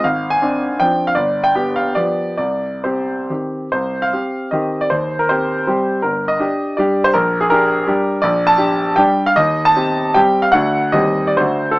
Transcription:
\new Staff \with { instrumentName = "Grand piano" } { \time 3/4 \key c \minor \tempo 4 = 154 << { f''8. aes''4~ aes''16 g''8. f''16 | d''8. g''8. f''8 d''4 | d''4 c''4 r4 | c''8. f''4~ f''16 ees''8. d''16 |
c''8. bes'16 c''2 | bes'8. ees''4~ ees''16 d''8. c''16 | bes'8. aes'16 bes'2 | \key c \dorian d''8. a''4~ a''16 g''8. f''16 |
ees''8. a''4~ a''16 g''8. f''16 | fis''4 ees''8. d''16 c''8. a'16 | } \\ { aes,,4 <c' d'>4 <f c' d'>4 | g,,4 <b g'>4 <f b g'>4 | c,4 <c' g'>4 <ees c' g'>4 | c,4 <c' g'>4 <ees c' g'>4 |
ees,4 <c' g'>4 <g c' g'>4 | g,,4 <d' g'>4 <g d' g'>4 | bes,,4 <d' g'>4 <g d' g'>4 | bes,,4 <d' g'>4 <g d' g'>4 |
ees,4 <c' g'>4 <g c' g'>4 | <d, a d' fis'>4 <ees, g c' g'>4 <d, a d' fis'>4 | } >> }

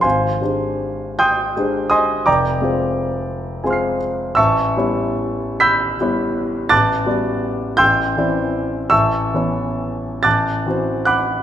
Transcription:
\new Staff \with { instrumentName = "Grand piano" } { \time 6/8 \key f \dorian \tempo 4. = 54 << { <c'' f'' aes'' c'''>4. <g'' c''' ees''' g'''>4 <ees'' aes'' c''' ees'''>8 | <d'' g'' bes'' d'''>2~ <d'' g'' bes'' d'''>8 r8 | \key a \mixolydian <e'' a'' cis''' e'''>4. <b'' e''' g''' b'''>4. | <a'' d''' fis''' a'''>4. <g'' c''' e''' g'''>4. |
<e'' a'' cis''' e'''>4. <a'' d''' fis''' a'''>4 <fis'' b'' d''' fis'''>8 | } \\ { aes,,8 <aes d' g' c''>4. <aes d' g' c''>4 | f,,8 <aes c' f' c''>4. <aes c' f' c'' aes'' c''' f''' c''''>4 | a,,8 <g b e' cis''>4. <g b e' cis''>4 | a,,8 <g b fis' d''>4 a,,8 <e c' e' d''>4 |
a,,8 <e b e' cis''>4 a,,8 <e c' fis' c''>4 | } >> }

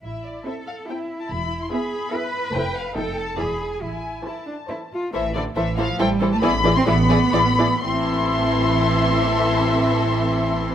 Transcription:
<<
  \new Staff \with { instrumentName = "Violin section" } { \time 3/4 \key a \minor \tempo 4 = 137 e''8 d''8 e''8 f''8 g''8. a''16 | b''8. c'''16 b''2 | g''8 f''8 g''8 a''8 b''8. gis''16 | gis''4 a''4. r8 |
e''8 d''8 e''8 f''8 g''8. a''16 | b''8. c'''16 b''2 | c'''2.~ | c'''2. | }
  \new Staff \with { instrumentName = "Violin section" } { \time 3/4 \key a \minor r4 <a' e''>4 <a' e''>4 | r4 <gis' e''>4 <gis' e''>4 | <a' c''>4 <a' ees''>4 <gis' d''>4 | r4 <a' c''>4 <a' c''>4 |
<a' c''>8 <a' c''>8 <a' c''>8 <a' c''>8 <a' c''>8 <a' c''>8 | <gis' d''>8 <gis' d''>8 <gis' d''>8 <gis' d''>8 <gis' d''>8 <gis' d''>8 | <a' e''>2.~ | <a' e''>2. | }
  \new Staff \with { instrumentName = "Cello section" } { \time 3/4 \key a \minor e'4 a'4 e'4~ | e'4 gis'4 b'4~ | b'4 a'4 gis'4 | e'4 e'8 d'8 e'8 f'8 |
e8 d8 e8 f8 g8. a16 | b8. c'16 b2 | c'2.~ | c'2. | }
  \new Staff \with { instrumentName = "Viola section" } { \time 3/4 \key a \minor r4 <c' e'>4 <c' e'>4 | r4 <b e'>4 <b e'>4 | <a e'>4 <a ees'>4 <e e'>4 | r4 <e e'>4 <e e'>4 |
<e e'>8 <e e'>8 <e e'>8 <e e'>8 <e e'>8 <e e'>8 | <e e'>8 <e e'>8 <e e'>8 <e e'>8 <e e'>8 <e e'>8 | <e e'>2.~ | <e e'>2. | }
  \new Staff \with { instrumentName = "Double bass section" } { \clef bass \time 3/4 \key a \minor a,,4 r2 | e,,4 r2 | f,,4 f,,4 e,,4 | a,,4 r2 |
a,,4 a,,4 a,,4 | a,,4 a,,4 a,,4 | a,,2.~ | a,,2. | }
>>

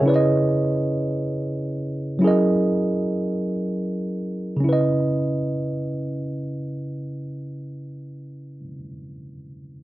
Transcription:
\new Staff \with { instrumentName = "Tine electric piano" } { \time 6/8 \key cis \dorian \tempo 4. = 46 << { <gis' cis''>16 r2 r8. | r2. | r2. | r2. | } \\ { <cis cis' e' b' d'' dis''>2. | <fis cis' e' gis' ais' dis''>2. | <cis cis' e' b' dis''>2.~ | <cis cis' e' b' dis''>2. | } >> }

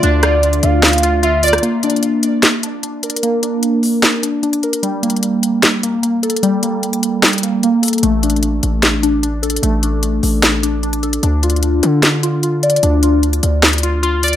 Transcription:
<<
  \new Staff \with { instrumentName = "Soft synth lead" } { \time 4/4 \key d \minor \tempo 4 = 150 d''4. f''4. e''8 d''8 | r1 | r1 | r1 |
r1 | r1 | r1 | r1 |
r1 | }
  \new Staff \with { instrumentName = "Synth keys" } { \time 4/4 \key d \minor <d' f' d''>8 f'2 f'8 f'8 d''8 | bes8 d'2 d'8 d'8 bes'8 | bes8 d'2 d'8 d'8 bes'8 | g8 bes2 bes8 bes8 a'8 |
g8 bes2 bes8 bes8 a'8 | a8 d'2 d'8 d'8 a'8 | a8 d'2 d'8 d'8 a'8 | d'8 f'2 f'8 f'8 d''8 |
d'8 f'2 f'8 f'8 d''8 | }
  \new Staff \with { instrumentName = "Analog synth pad" } { \time 4/4 \key d \minor <d a f'>1 | r1 | r1 | r1 |
r1 | r1 | r1 | r1 |
r1 | }
  \new Staff \with { instrumentName = "808-style bass" } { \clef bass \time 4/4 \key d \minor d,4. d,2~ d,8 | r1 | r1 | r1 |
r1 | a,,4. a,,2~ a,,8 | a,,4. a,,2~ a,,8 | d,4. d2~ d8 |
d,4. d,2~ d,8 | }
  \new DrumStaff \with { instrumentName = "Drums" } \drummode { \time 4/4 hh8 <hh ss>8 hh16 hh16 hh8 <hh sn>32 hh32 hh32 hh32 hh8 hh8 <hh hho>32 hh32 <hh ss>32 hh32 | \tuplet 3/2 { hh16 r16 r16 hh16 hh16 hh16 } hh8 hh8 <hh sn>8 hh8 \tuplet 3/2 { hh16 r16 r16 hh16 hh16 hh16 } | hh8 hh8 hh8 hho8 <hh sn>8 hh8 hh16 hh16 hh16 hh16 | \tuplet 3/2 { hh16 r16 r16 hh16 hh16 hh16 } hh8 hh8 <hh sn>8 hh8 \tuplet 3/2 { hh16 r16 r16 hh16 hh16 hh16 } |
hh8 hh8 hh16 hh16 hh8 <hh sn>32 hh32 hh32 hh32 hh8 hh8 <hh hho>32 hh32 hh32 hh32 | \tuplet 3/2 { hh16 r16 r16 hh16 hh16 hh16 } hh8 hh8 <hh sn>8 hh8 \tuplet 3/2 { hh16 r16 r16 hh16 hh16 hh16 } | hh8 hh8 hh8 hho8 <hh sn>8 hh8 hh16 hh16 hh16 hh16 | \tuplet 3/2 { hh16 r16 r16 hh16 hh16 hh16 } hh8 hh8 <hh sn>8 hh8 \tuplet 3/2 { hh16 r16 r16 hh16 hh16 hh16 } |
hh8 hh8 hh16 hh16 hh8 <hh sn>32 hh32 hh32 hh32 hh8 hh8 <hh hho>32 hh32 hh16 | }
>>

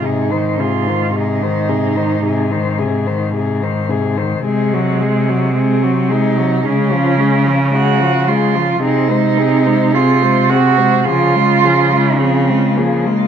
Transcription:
<<
  \new Staff \with { instrumentName = "Cello" } { \time 4/4 \key aes \major \tempo 4 = 54 aes'16 c''16 aes'16 c''16 aes'16 c''16 aes'16 c''16 aes'16 c''16 aes'16 c''16 aes'16 c''16 aes'16 c''16 | \key des \major aes'16 ges'16 aes'16 ges'16 aes'16 ges'16 aes'16 ges'16 aes'16 f'16 aes'16 f'16 aes'16 f'16 aes'16 f'16 | aes'16 c''16 aes'16 c''16 aes'16 c''16 aes'16 c''16 aes'16 f'16 aes'16 f'16 aes'16 f'16 aes'16 f'16 | }
  \new Staff \with { instrumentName = "Cello" } { \time 4/4 \key aes \major ees'8 f'8 ees'4. r4. | \key des \major aes4 c'8 ees'8 des'4 ges'8 f'8 | ees'4 f'8 ges'8 f'4 c'8 bes8 | }
  \new Staff \with { instrumentName = "Cello" } { \clef bass \time 4/4 \key aes \major c16 ees16 c16 ees16 c16 ees16 c16 ees16 c16 ees16 c16 ees16 c16 ees16 c16 ees16 | \key des \major aes16 ges16 aes16 ges16 aes16 ges16 aes16 ges16 aes16 f16 aes16 f16 aes16 f16 aes16 f16 | c'16 aes16 c'16 aes16 c'16 aes16 c'16 aes16 f16 aes16 f16 aes16 f16 aes16 f16 aes16 | }
  \new Staff \with { instrumentName = "Cello" } { \clef bass \time 4/4 \key aes \major aes,1 | \key des \major c2 des2 | c2 des2 | }
>>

